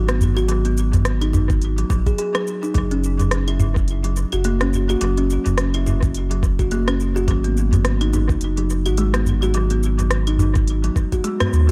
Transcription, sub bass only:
0, 0, Header, 1, 2, 480
1, 0, Start_track
1, 0, Key_signature, 5, "minor"
1, 0, Tempo, 566038
1, 411, Time_signature, 4, 2, 24, 8
1, 9934, End_track
2, 0, Start_track
2, 0, Title_t, "Sub bass"
2, 0, Program_c, 0, 38
2, 0, Note_on_c, 0, 32, 91
2, 1561, Note_off_c, 0, 32, 0
2, 1612, Note_on_c, 0, 34, 76
2, 1789, Note_off_c, 0, 34, 0
2, 2333, Note_on_c, 0, 30, 104
2, 3601, Note_off_c, 0, 30, 0
2, 3670, Note_on_c, 0, 30, 107
2, 4201, Note_off_c, 0, 30, 0
2, 4251, Note_on_c, 0, 30, 107
2, 4561, Note_off_c, 0, 30, 0
2, 4631, Note_on_c, 0, 30, 90
2, 6171, Note_on_c, 0, 32, 98
2, 6184, Note_off_c, 0, 30, 0
2, 7081, Note_off_c, 0, 32, 0
2, 7134, Note_on_c, 0, 30, 85
2, 7511, Note_on_c, 0, 32, 85
2, 7523, Note_off_c, 0, 30, 0
2, 9241, Note_off_c, 0, 32, 0
2, 9775, Note_on_c, 0, 39, 85
2, 9934, Note_off_c, 0, 39, 0
2, 9934, End_track
0, 0, End_of_file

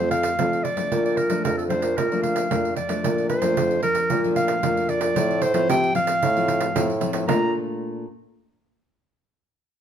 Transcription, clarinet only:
0, 0, Header, 1, 2, 480
1, 0, Start_track
1, 0, Key_signature, -2, "major"
1, 0, Tempo, 530504
1, 828, Time_signature, 4, 2, 24, 8
1, 8869, End_track
2, 0, Start_track
2, 0, Title_t, "Clarinet"
2, 0, Program_c, 0, 71
2, 97, Note_on_c, 0, 77, 96
2, 576, Note_on_c, 0, 74, 102
2, 589, Note_off_c, 0, 77, 0
2, 942, Note_off_c, 0, 74, 0
2, 952, Note_on_c, 0, 74, 84
2, 1058, Note_on_c, 0, 70, 82
2, 1071, Note_off_c, 0, 74, 0
2, 1299, Note_off_c, 0, 70, 0
2, 1304, Note_on_c, 0, 70, 82
2, 1418, Note_off_c, 0, 70, 0
2, 1425, Note_on_c, 0, 69, 71
2, 1479, Note_off_c, 0, 69, 0
2, 1531, Note_on_c, 0, 72, 85
2, 1779, Note_on_c, 0, 70, 78
2, 1792, Note_off_c, 0, 72, 0
2, 2005, Note_off_c, 0, 70, 0
2, 2010, Note_on_c, 0, 77, 81
2, 2465, Note_off_c, 0, 77, 0
2, 2499, Note_on_c, 0, 74, 86
2, 2950, Note_off_c, 0, 74, 0
2, 2979, Note_on_c, 0, 72, 88
2, 3430, Note_off_c, 0, 72, 0
2, 3463, Note_on_c, 0, 70, 98
2, 3809, Note_off_c, 0, 70, 0
2, 3944, Note_on_c, 0, 77, 87
2, 4428, Note_on_c, 0, 74, 98
2, 4442, Note_off_c, 0, 77, 0
2, 4902, Note_on_c, 0, 72, 97
2, 4916, Note_off_c, 0, 74, 0
2, 5145, Note_off_c, 0, 72, 0
2, 5156, Note_on_c, 0, 79, 107
2, 5375, Note_off_c, 0, 79, 0
2, 5389, Note_on_c, 0, 77, 99
2, 6311, Note_off_c, 0, 77, 0
2, 6583, Note_on_c, 0, 82, 83
2, 6808, Note_off_c, 0, 82, 0
2, 8869, End_track
0, 0, End_of_file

